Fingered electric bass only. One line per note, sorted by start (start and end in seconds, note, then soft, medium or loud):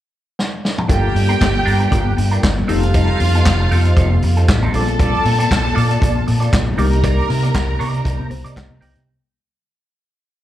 0.90 1.08 G1 medium
1.15 1.34 G2 medium
1.41 1.60 G1 medium
1.67 1.86 G2 medium
1.92 2.11 G1 loud
2.18 2.37 G2 medium
2.43 2.62 G1 medium
2.70 3.07 F1 medium
3.21 3.39 F2 loud
3.46 3.65 F1 medium
3.71 3.90 F2 medium
3.97 4.16 F1 loud
4.23 4.42 F2 loud
4.49 4.67 A1 medium
4.74 5.12 A#1 loud
5.25 5.44 A#2 loud
5.52 5.70 A#1 medium
5.77 5.95 A#2 loud
6.02 6.21 A#1 medium
6.28 6.47 A#2 medium
6.53 6.72 A#1 medium
6.78 7.16 C2 medium
7.30 7.48 C3 medium
7.55 7.74 C2 medium
7.81 7.99 C3 medium
8.05 8.16 C2 loud
8.20 8.28 C3 medium
8.31 8.41 C2 medium
8.45 8.53 C3 medium
8.57 8.67 C2 medium
8.70 8.79 C3 medium
8.82 8.92 C2 loud
8.97 9.05 C3 medium